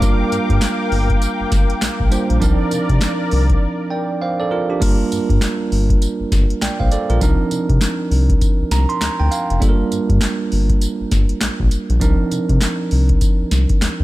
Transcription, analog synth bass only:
0.02 0.16 G1 loud
0.32 0.39 G2 soft
0.50 0.59 G2 loud
0.92 1.15 G1 medium
1.40 1.45 G1 soft
1.52 1.66 G1 loud
1.82 1.89 A#1 soft
2.00 2.09 A#1 medium
2.30 2.39 A#1 loud
2.42 2.56 C2 loud
2.72 2.79 C3 soft
2.90 2.99 C3 loud
3.33 3.56 C2 loud
4.82 4.96 G1 loud
5.13 5.20 G2 medium
5.30 5.39 G2 loud
5.72 5.95 G1 medium
6.20 6.25 G1 soft
6.32 6.46 G1 loud
6.62 6.69 A#1 medium
6.80 6.89 A#1 medium
7.10 7.19 A#1 loud
7.22 7.36 C2 loud
7.52 7.59 C3 medium
7.70 7.79 C3 medium
8.11 8.35 C2 loud
8.60 8.65 C2 soft
8.71 8.86 C2 loud
9.02 9.09 D2 medium
9.20 9.29 D2 loud
9.51 9.59 F1 medium
9.62 9.76 G1 loud
9.93 10.00 G2 soft
10.10 10.19 G2 loud
10.53 10.76 G1 medium
11.01 11.05 G1 soft
11.12 11.26 G1 loud
11.42 11.49 A#1 medium
11.60 11.69 A#1 loud
11.90 11.99 A#1 loud
12.02 12.16 C2 loud
12.32 12.39 C3 medium
12.50 12.59 C3 medium
12.92 13.16 C2 loud
13.40 13.45 C2 soft
13.52 13.66 C2 loud
13.82 13.89 D2 medium
14.00 14.04 D2 medium

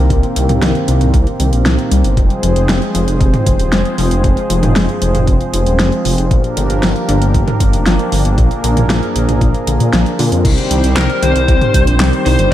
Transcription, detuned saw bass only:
0.10 0.22 C2 loud
0.36 0.48 C2 medium
0.49 0.61 C2 medium
0.62 0.74 C2 loud
0.88 1.00 C2 loud
1.01 1.13 C2 medium
1.14 1.25 C2 loud
1.40 1.51 C2 loud
1.53 1.64 A#1 medium
1.65 1.77 C2 loud
1.91 2.03 C2 loud
2.04 2.16 G1 medium
2.17 2.29 F1 loud
2.43 2.55 F1 medium
2.56 2.68 F1 medium
2.69 2.81 F1 loud
2.95 3.06 F1 loud
3.08 3.19 F1 medium
3.21 3.32 F1 loud
3.46 3.58 F1 medium
3.59 3.71 D#1 medium
3.72 3.84 F1 loud
3.98 4.10 F1 medium
4.11 4.23 F1 medium
4.24 4.36 F1 loud
4.50 4.62 F1 medium
4.63 4.75 F1 medium
4.76 4.87 F1 loud
5.02 5.13 F1 medium
5.15 5.26 F1 medium
5.28 5.39 F1 loud
5.53 5.65 F1 medium
5.66 5.78 D#1 medium
5.79 5.91 F1 loud
6.05 6.17 F1 medium
6.18 6.30 F1 medium
6.31 6.43 G1 loud
6.57 6.69 G1 medium
6.70 6.82 G1 medium
6.83 6.94 G1 loud
7.09 7.20 G1 loud
7.22 7.33 G1 medium
7.34 7.46 G1 loud
7.60 7.72 G1 medium
7.74 7.85 F1 medium
7.86 7.98 G1 loud
8.12 8.24 G1 medium
8.25 8.37 G1 medium
8.38 8.50 A#1 loud
8.64 8.75 A#1 medium
8.77 8.88 A#1 medium
8.90 9.01 A#1 loud
9.16 9.27 A#1 medium
9.29 9.40 A#1 medium
9.41 9.53 A#1 loud
9.67 9.79 A#1 loud
9.80 9.92 A#2 medium
9.93 10.05 A#1 loud
10.19 10.31 A#2 medium
10.32 10.44 F2 medium
10.45 10.57 C2 loud
10.71 10.82 C2 medium
10.84 10.95 C2 medium
10.97 11.08 C2 loud
11.23 11.34 C2 loud
11.36 11.47 C2 medium
11.48 11.60 C2 loud
11.74 11.86 C2 medium
11.87 11.99 A#1 medium
12.00 12.12 C2 loud
12.26 12.38 C2 loud
12.39 12.50 G1 medium

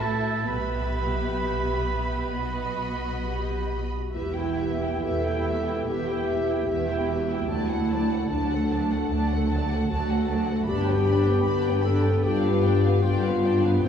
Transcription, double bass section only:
0.00 0.47 A1 soft
0.46 2.31 B1 soft
2.33 3.90 B1 soft
4.14 4.93 E1 medium
5.03 5.78 E1 medium
5.87 6.58 E1 soft
6.67 7.39 E1 medium
7.48 8.19 D2 medium
8.28 9.01 D2 soft
9.10 9.81 D2 medium
9.89 10.58 D2 medium
10.67 11.35 G1 medium
11.43 12.14 G1 medium
12.23 12.95 G1 medium
13.05 13.75 G1 medium
13.83 13.88 C2 medium

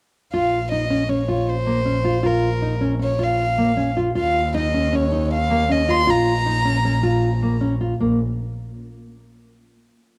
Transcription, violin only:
0.33 0.69 F5 medium
0.72 1.11 D#5 medium
1.09 1.51 C#5 medium
1.49 2.27 C5 medium
2.26 2.83 A#4 medium
3.03 3.25 C#5 medium
3.23 3.98 F5 medium
4.18 4.53 F5 medium
4.57 4.96 D#5 medium
4.95 5.32 C#5 medium
5.34 5.73 F5 medium
5.71 5.92 D#5 medium
5.90 6.12 C6 medium
6.10 7.63 A#5 medium

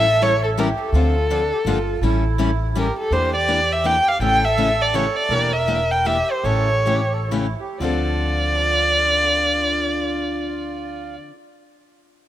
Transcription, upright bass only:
0.00 0.71 A1 medium
0.92 1.51 D2 medium
1.65 1.94 G1 medium
2.01 2.89 A1 medium
3.11 3.98 E2 medium
4.19 5.07 A1 medium
5.29 6.20 E1 medium
6.44 7.53 A1 medium
7.80 11.16 D2 medium

